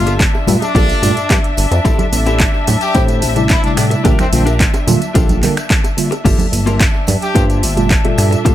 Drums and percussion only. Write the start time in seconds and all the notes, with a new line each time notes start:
0.06 closed hi-hat, tambourine
0.20 kick, clap, closed hi-hat, tambourine
0.35 tambourine, high bongo
0.47 open hi-hat, tambourine, low conga
0.62 closed hi-hat, tambourine, high bongo
0.75 kick, closed hi-hat, tambourine
0.90 closed hi-hat, tambourine
1.03 open hi-hat, tambourine, high bongo
1.17 closed hi-hat, tambourine
1.30 kick, clap, closed hi-hat, tambourine, high bongo
1.44 closed hi-hat, tambourine
1.57 open hi-hat, tambourine
1.72 closed hi-hat, tambourine, high bongo
1.85 kick, closed hi-hat, tambourine
1.99 closed hi-hat, tambourine, high bongo, low conga
2.12 open hi-hat, tambourine, high conga
2.26 closed hi-hat, tambourine
2.40 kick, clap, closed hi-hat, tambourine, high bongo
2.54 tambourine
2.67 open hi-hat, tambourine, high bongo, low conga
2.81 closed hi-hat, tambourine
2.95 kick, closed hi-hat, tambourine
3.08 closed hi-hat, tambourine, high bongo
3.22 open hi-hat, tambourine
3.36 closed hi-hat, tambourine, high bongo
3.49 kick, clap, closed hi-hat, tambourine
3.64 closed hi-hat, tambourine
3.77 finger snap, open hi-hat, tambourine, high bongo
3.91 closed hi-hat, tambourine
4.05 kick, closed hi-hat, tambourine, high bongo
4.19 finger snap, closed hi-hat, tambourine, low conga
4.33 open hi-hat, tambourine, high conga
4.47 closed hi-hat, tambourine, high bongo
4.60 kick, clap, closed hi-hat, tambourine
4.74 closed hi-hat, tambourine, high bongo
4.87 open hi-hat, tambourine, low conga
5.02 closed hi-hat, tambourine
5.15 kick, closed hi-hat, tambourine, high bongo
5.28 closed hi-hat, tambourine, low conga
5.29 tambourine
5.43 clap, open hi-hat, tambourine, high bongo
5.56 finger snap, closed hi-hat, tambourine
5.70 kick, clap, closed hi-hat, tambourine
5.84 closed hi-hat, tambourine, high bongo
5.98 open hi-hat, tambourine
6.12 closed hi-hat, tambourine, high bongo
6.25 kick, closed hi-hat, crash, tambourine
6.39 closed hi-hat, tambourine, high bongo, low conga
6.53 open hi-hat, tambourine, high conga
6.66 closed hi-hat, tambourine, high bongo
6.80 kick, clap, closed hi-hat, tambourine
6.94 tambourine
7.07 open hi-hat, tambourine, high bongo, low conga
7.21 closed hi-hat, tambourine
7.35 kick, closed hi-hat, tambourine, high bongo
7.50 closed hi-hat, tambourine
7.63 open hi-hat, tambourine
7.77 closed hi-hat, tambourine, high bongo
7.90 kick, clap, closed hi-hat, tambourine
8.05 closed hi-hat, tambourine, high bongo
8.18 finger snap, open hi-hat, tambourine
8.32 closed hi-hat, tambourine
8.45 kick, closed hi-hat, tambourine, high bongo